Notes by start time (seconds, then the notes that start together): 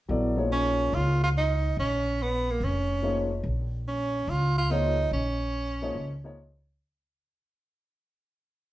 0.08 A#1 F#3 B3 E4 A4 D5
0.37 F3 A#3 D#4 G#4 C#5
0.52 C#4
0.93 C#2 F4
1.24 F4
1.37 D#4
1.77 A#1 C#4
2.22 B3
2.51 A#3
2.60 F1 C#4
3.02 F3 A#3 D#4 G#4 C#5
3.43 A#1
3.88 C#4
4.27 C#2 F4
4.58 F4
4.70 F3 A#3 D#4 G#4 C#5
5.11 A#1 C#4
5.82 F3 A#3 D#4 G#4 C#5
5.95 C#2
6.24 F3 A#3 D#4 G#4 C#5